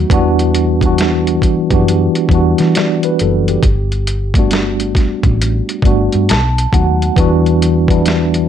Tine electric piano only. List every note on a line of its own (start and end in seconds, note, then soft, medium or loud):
0.00 0.12 F#3 medium
0.00 0.13 A3 medium
0.00 0.12 B3 medium
0.00 0.13 D#4 medium
0.00 0.13 F#4 medium
0.10 0.70 E3 loud
0.10 0.70 G3 loud
0.10 0.71 B3 loud
0.10 0.71 D4 loud
0.10 0.72 F#4 loud
0.82 1.54 E3 medium
0.82 1.55 G3 medium
0.82 1.55 B3 medium
0.82 1.56 D4 medium
0.86 1.56 F#4 medium
1.70 2.24 E3 medium
1.70 2.25 B3 medium
1.70 2.25 D4 medium
1.70 2.26 F#4 medium
1.70 2.24 G4 medium
2.31 3.63 E3 medium
2.31 3.64 G3 medium
2.31 3.64 B3 medium
2.31 3.65 D4 medium
2.31 2.77 F#4 medium
2.76 3.02 D5 medium
3.05 3.20 B4 medium
3.21 3.47 A4 medium
3.49 3.90 G4 medium
4.36 5.67 G3 medium
4.36 5.67 A3 medium
4.36 5.67 B3 medium
4.36 5.68 D4 medium
4.36 5.68 F#4 medium
5.83 6.28 G3 medium
5.83 6.28 A3 medium
5.83 6.29 B3 medium
5.83 6.29 D4 medium
5.83 6.30 F#4 medium
6.30 6.70 A5 medium
6.72 7.12 F#3 medium
6.72 7.12 A3 medium
6.72 7.13 B3 medium
6.72 7.13 D#4 medium
6.72 7.14 F#4 medium
6.72 7.14 F#5 medium
7.16 7.76 E3 loud
7.16 7.76 G3 loud
7.16 7.77 B3 loud
7.16 7.77 D4 loud
7.16 7.78 F#4 loud
7.88 8.49 E3 medium
7.88 8.49 G3 medium
7.88 8.49 B3 medium
7.88 8.49 D4 medium
7.88 8.49 E4 medium